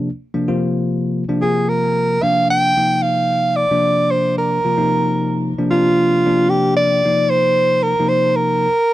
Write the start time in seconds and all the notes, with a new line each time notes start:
0.34 C3 F3 A#3 D4
0.48 C3 F3 A#3 F4
1.28 C3 F3 A#3 D4
1.42 C3 F3 A#3 F4 G#4
1.69 A#4
2.23 C3 F3 A#3 D4 F5
2.50 G5
2.77 C3 F3 A#3 D#4
3.02 F5
3.56 D5
3.71 C3 F3 A#3 D4
4.11 C5
4.38 A#4
4.65 C3 F3 A#3 F4
4.77 C3 F3 A#3 D#4
5.58 C3 F3 A#3 D4
5.71 C3 F3 A#3 D4 F4
6.26 C3 F3 A#3 D4
6.50 G4
6.76 D5
7.05 C3 F3 A#3 D#4
7.30 C5
7.83 A#4
8.00 C3 F3 A#3 D#4
8.08 C5
8.36 A#4